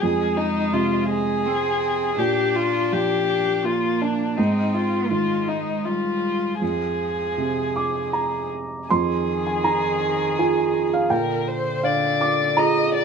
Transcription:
0.00 felt piano F2, cello G#3, violin G#4
0.37 violin D#4
0.73 felt piano C3, violin F4
1.09 violin G#4
1.46 cello C4
2.18 felt piano A#2, cello D4, violin G4
2.55 violin F4
2.92 felt piano F3, violin G4
3.28 cello D4
3.64 cello A#3, violin F4
4.01 violin D4
4.37 felt piano G#2, cello C4, violin D#4
4.74 violin F4
5.10 felt piano D#3, cello G#3, violin F4
5.48 violin D#4
5.85 cello G3, violin F4
6.62 felt piano F2, cello F3, violin G#4
7.38 felt piano C3
7.76 felt piano D6
8.13 felt piano A#5
8.89 felt piano F2 C6, cello D#3, violin G#4
9.47 felt piano G#5
9.64 felt piano D#4 A#5
10.38 felt piano F4 G#4 G#5
10.94 felt piano F5
11.09 felt piano A#2 G5, cello D3, violin A#4
11.47 violin C5
11.83 felt piano D3 F5, violin D5
12.21 felt piano D6
12.57 felt piano F4 G#4 A#5, violin D#5
12.94 violin D5

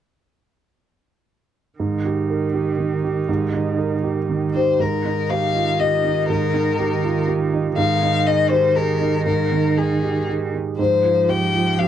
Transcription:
1.79 grand piano G#2, cello D#3
2.05 grand piano G4
2.30 grand piano A#4
2.54 grand piano G4
2.79 grand piano D#3
3.04 grand piano G4
3.29 grand piano G#2
3.54 grand piano D#4
3.78 grand piano A#4
4.03 grand piano G4
4.29 grand piano D#3
4.54 grand piano G4, violin C5
4.80 grand piano G#2, cello D#3, violin A#4
5.05 grand piano D#4
5.30 grand piano G4, violin F5
5.55 grand piano F4
5.80 grand piano G4, violin D#5
6.05 grand piano D#4
6.29 grand piano G#2, violin A#4
6.54 grand piano D#3
6.79 grand piano G4
7.04 grand piano F4
7.28 grand piano G4
7.53 grand piano D#4
7.78 grand piano G#2, cello D#3, violin F5
8.03 grand piano D#4
8.26 grand piano G#4, violin D#5
8.49 grand piano G4, violin C5
8.75 grand piano G#4, violin A#4
9.01 grand piano D#4
9.26 grand piano G#2, violin A#4
9.52 grand piano D#3
9.77 violin G#4, grand piano G#4
10.03 grand piano G4
10.29 grand piano G#4
10.55 grand piano D#4
10.78 grand piano G#2, cello F3, violin C5
11.04 grand piano F4
11.29 grand piano G4, violin G5
11.54 grand piano F4
11.78 grand piano G4, violin F5

